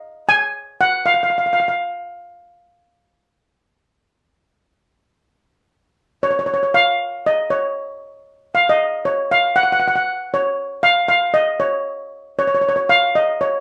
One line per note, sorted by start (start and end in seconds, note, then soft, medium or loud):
0.29 0.82 G#5 loud
0.81 1.07 F#5 medium
1.06 1.13 F5 medium
1.14 1.21 F5 medium
1.23 1.29 F5 medium
1.30 1.36 F5 soft
1.38 1.45 F5 medium
1.46 1.52 F5 soft
1.53 1.59 F5 medium
1.60 1.67 F5 soft
1.68 1.75 F5 medium
6.23 6.29 C#5 medium
6.31 6.38 C#5 medium
6.39 6.45 C#5 medium
6.46 6.52 C#5 medium
6.54 6.61 C#5 medium
6.63 6.69 C#5 medium
6.74 7.27 F5 medium
7.26 7.49 D#5 medium
7.50 7.98 C#5 medium
8.55 8.60 F5 medium
8.69 9.07 D#5 medium
9.05 9.31 C#5 medium
9.31 9.55 F5 medium
9.56 9.62 F#5 medium
9.63 9.71 F#5 medium
9.72 9.78 F#5 medium
9.80 9.86 F#5 medium
9.88 9.94 F#5 medium
9.96 10.02 F#5 medium
10.34 10.81 C#5 medium
10.83 11.07 F5 medium
11.08 11.20 F5 medium
11.34 11.46 D#5 medium
11.60 12.08 C#5 medium
12.39 12.46 C#5 medium
12.47 12.53 C#5 medium
12.55 12.60 C#5 medium
12.61 12.67 C#5 medium
12.69 12.75 C#5 medium
12.76 12.84 C#5 medium
12.89 13.13 F5 loud
13.15 13.42 D#5 medium
13.41 13.60 C#5 medium